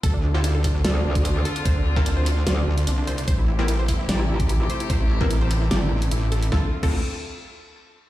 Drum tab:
CC |----------------|----------------|----------------|----------------|
HH |x---x-o-x--xx-xx|x---x-o-x--xx-xx|x---x-o-x--xx-xx|x---x-o-x--xx-xx|
SD |--------o-------|--------o-------|--------o-------|--------o-------|
BD |o-----o----o----|o--o------------|o-----o----o----|o--o------------|

CC |---x------------|
HH |----------------|
SD |o---------------|
BD |o--o------------|